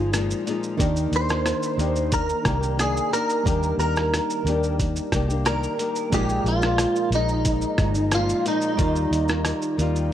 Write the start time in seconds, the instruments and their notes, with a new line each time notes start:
Already playing: fingered electric bass G1, nylon-string guitar G#3 D#4
0.00 nylon-string guitar F3
0.12 nylon-string guitar A#2 F3 G#3 D#4, cross-stick, closed hi-hat, shaker
0.31 shaker
0.46 nylon-string guitar A#2 F3 G#3, closed hi-hat, shaker
0.50 nylon-string guitar D#4
0.63 shaker
0.77 fingered electric bass D#2, synth keys D#3 A#3 D4 D#4, nylon-string guitar D#3 A#3 D4 G4, kick, closed hi-hat, shaker
0.82 synth keys A#4
0.96 shaker
1.12 fingered electric bass D#2, closed hi-hat, shaker
1.16 clean electric guitar C5
1.29 cross-stick, shaker
1.46 cross-stick, closed hi-hat, shaker
1.63 shaker
1.77 fingered electric bass D#2, nylon-string guitar D#3 A#3 D4 G4, closed hi-hat, shaker
1.96 shaker
2.12 clean electric guitar A#4, kick, closed hi-hat, shaker
2.29 shaker
2.43 fingered electric bass C2, nylon-string guitar D#3 A#3 D4 G4, kick, cross-stick, closed hi-hat, shaker
2.61 nylon-string guitar A#3 D4 G4, shaker
2.77 nylon-string guitar D#3 A#3 D4, clean electric guitar G#4, cross-stick, closed hi-hat, shaker
2.97 shaker
3.11 nylon-string guitar D#3 A#3 D4 G4, clean electric guitar A#4, closed hi-hat, shaker
3.29 shaker
3.43 fingered electric bass D#2, nylon-string guitar D#3 A#3 D4 G4, synth keys G3 A#3 D4 D#4, kick, closed hi-hat, shaker
3.48 synth keys A#4
3.63 shaker
3.78 fingered electric bass D#2, clean electric guitar A#4, closed hi-hat, shaker
3.96 cross-stick, shaker
4.14 cross-stick, closed hi-hat, shaker
4.30 shaker
4.45 fingered electric bass D#2, nylon-string guitar D#3 A#3 D4, closed hi-hat, shaker
4.49 nylon-string guitar G4
4.63 shaker
4.80 kick, closed hi-hat, shaker
4.96 shaker
5.12 fingered electric bass C2, nylon-string guitar D#3 A#3 D4 G4, kick, cross-stick, closed hi-hat, shaker
5.28 nylon-string guitar D4 G4, shaker
5.32 nylon-string guitar A#3
5.45 nylon-string guitar D#3 A#3 D4 G4, clean electric guitar A#4, cross-stick, closed hi-hat, shaker
5.63 shaker
5.77 nylon-string guitar D#3 A#3 D4, closed hi-hat, shaker
5.82 nylon-string guitar G4
5.96 shaker
6.10 fingered electric bass A#1, nylon-string guitar A#2 F3 G#3, synth keys G#3 A#3 D#4, kick, closed hi-hat, shaker
6.14 nylon-string guitar D#4, synth keys F4 A#4, clean electric guitar G4
6.29 shaker
6.44 fingered electric bass A#1, clean electric guitar F4, closed hi-hat, shaker
6.62 cross-stick, shaker
6.78 cross-stick, closed hi-hat, shaker
6.96 shaker
7.10 fingered electric bass A#1, nylon-string guitar A#2 F3 G#3, closed hi-hat, shaker
7.15 clean electric guitar D#4, nylon-string guitar D#4
7.28 shaker
7.45 kick, closed hi-hat, shaker
7.61 shaker
7.77 fingered electric bass G1, nylon-string guitar A#2 F3 G#3 D#4, kick, cross-stick, closed hi-hat, shaker
7.94 nylon-string guitar F3 G#3 D#4, shaker
8.12 nylon-string guitar A#2 F3 G#3, clean electric guitar F4, cross-stick, closed hi-hat, shaker
8.16 nylon-string guitar D#4
8.29 shaker
8.44 nylon-string guitar A#2 F3 G#3 D#4, clean electric guitar D#4, closed hi-hat, shaker
8.61 shaker
8.75 fingered electric bass D#2, nylon-string guitar D#3 G3, synth keys G3 D#4 D5, kick, closed hi-hat, shaker
8.79 synth keys F4 A#4, nylon-string guitar F4
8.96 shaker
9.11 fingered electric bass D#2, closed hi-hat, shaker
9.28 cross-stick, shaker
9.45 cross-stick, closed hi-hat, shaker
9.62 shaker
9.77 fingered electric bass D#2, nylon-string guitar D#3 G3 F4, closed hi-hat, shaker
9.96 shaker